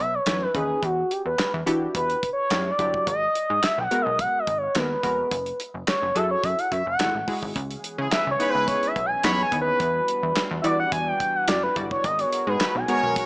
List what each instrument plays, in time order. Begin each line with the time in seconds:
0.00 analog synth bass B1, analog synth lead E5
0.14 analog synth lead C#5
0.26 analog synth bass F#2, analog polysynth E3 C#4 D#4 B4, analog synth lead C#5, snare, clap, closed hi-hat
0.42 analog synth lead B4
0.54 analog synth bass D#2, analog polysynth E3 C#4 D#4 B4, analog synth lead G#4, kick, closed hi-hat
0.83 analog synth bass E2, analog synth lead F#4, kick, closed hi-hat
1.11 analog synth lead G4, closed hi-hat
1.26 analog synth bass E2, analog synth lead B4
1.38 snare, clap, closed hi-hat
1.54 analog synth bass E2
1.66 analog synth bass E3, analog polysynth D4 E4 F#4 G4, closed hi-hat
1.95 analog synth bass E2, analog synth lead B4, kick, closed hi-hat
2.10 closed hi-hat
2.23 kick, closed hi-hat
2.33 analog synth lead C#5
2.50 analog synth bass F#2, analog polysynth F#3 D4 E4 G4, snare, clap, closed hi-hat
2.70 analog synth lead D5
2.79 analog synth bass G1, analog polysynth F#3 D4 E4 G4, kick, closed hi-hat
2.94 kick
3.07 analog synth bass G#1, analog synth lead D#5, kick, closed hi-hat
3.35 closed hi-hat
3.50 analog synth bass G#2
3.63 analog synth lead E5, snare, clap, closed hi-hat
3.78 analog synth bass B1, analog synth lead G#5
3.83 analog synth lead F#5
3.91 analog polysynth G#3 B3 F#4 A#4, closed hi-hat
4.02 analog synth lead D#5
4.06 analog synth bass B1
4.19 analog synth lead F#5, kick, closed hi-hat
4.39 analog synth lead D#5
4.47 analog synth bass G#1, kick, closed hi-hat
4.58 analog synth lead C#5
4.75 analog synth bass D#2, analog polysynth G#3 B3 F#4 A#4, analog synth lead B4, snare, clap, closed hi-hat
5.03 analog synth bass F1, analog polysynth G#3 B3 F#4 A#4, kick, closed hi-hat
5.31 analog synth bass F#1, kick, closed hi-hat
5.46 closed hi-hat
5.60 closed hi-hat
5.74 analog synth bass F#1
5.87 analog synth lead C#5, snare, clap, closed hi-hat
6.02 analog synth bass F#1
6.15 analog synth bass F#2, analog polysynth E4 F#4 G#4 A4, analog synth lead E5, closed hi-hat
6.31 analog synth lead C#5
6.44 analog synth bass F#2, analog synth lead E5, kick, closed hi-hat
6.59 analog synth lead F#5, closed hi-hat
6.72 analog synth bass F#2, analog synth lead E5, kick, closed hi-hat
6.86 analog synth bass F#1, analog synth lead F#5
6.99 analog synth bass G#1, analog polysynth G#3 E4 F#4 A4, snare, clap, closed hi-hat
7.14 analog synth bass A1
7.27 analog polysynth G#3 E4 F#4 G#4, kick, open hi-hat
7.42 analog synth bass G#1, kick
7.56 analog synth bass C#2, analog synth pad E3 G#3 B3 C#4 G#4, kick, closed hi-hat
7.71 closed hi-hat
7.84 closed hi-hat
7.98 analog synth bass C#3, horn section G#3 E4 G#4
8.11 horn section E4 G#4 B4, analog synth lead E5, snare, clap, closed hi-hat
8.27 analog synth bass C#2
8.31 analog synth lead C#5
8.39 analog polysynth B3 D#4 E4 C#5, horn section E4 G#4 B4, closed hi-hat
8.49 analog synth lead B4
8.55 analog synth bass C#2
8.68 analog synth lead C#5, kick, closed hi-hat
8.83 closed hi-hat
8.87 analog synth lead E5
8.96 analog synth bass B1, kick, closed hi-hat
9.06 analog synth lead G#5
9.23 analog synth bass F#2, analog polysynth B3 D#4 E4 C#5, horn section E4 G#4 C#5, analog synth lead B5, snare, clap, closed hi-hat
9.43 analog synth lead G#5
9.52 analog synth bass D#2, analog polysynth B3 D#4 E4 C#5, kick, closed hi-hat
9.61 analog synth lead B4
9.80 analog synth bass E2, analog synth pad E3 G3 D4 F#4, kick, closed hi-hat
10.08 closed hi-hat
10.23 analog synth bass E2
10.36 snare, clap, closed hi-hat
10.51 analog synth bass E2
10.61 analog synth bass E3, analog polysynth G3 E4 F#4 D5, analog synth lead D5 E5, closed hi-hat
10.80 analog synth lead F#5
10.92 analog synth bass E2, analog synth lead G#5, kick, closed hi-hat
11.07 analog synth lead G5
11.20 kick, closed hi-hat
11.36 analog synth lead F#5
11.48 analog synth bass F#2, analog polysynth G3 E4 F#4 D5, analog synth lead D5, snare, clap, closed hi-hat
11.63 analog synth lead B4
11.76 analog synth bass G1, analog polysynth G3 E4 F#4 D5, kick, closed hi-hat
11.91 analog synth lead C#5, kick
12.04 analog synth bass G#1, analog synth pad D#3 B3 G#4 A#4, analog synth lead D#5, kick, closed hi-hat
12.19 analog synth lead C#5, closed hi-hat
12.33 closed hi-hat
12.47 analog synth bass G#2, horn section B3 D#4 G#4, analog synth lead B4
12.60 horn section D#4 F#4 B4, snare, clap, closed hi-hat
12.75 analog synth bass B1, analog synth lead G#5
12.88 analog polysynth G#3 B3 F#4 A#4, horn section F#4 A#4 C#5, closed hi-hat
13.03 analog synth bass B1
13.16 kick, closed hi-hat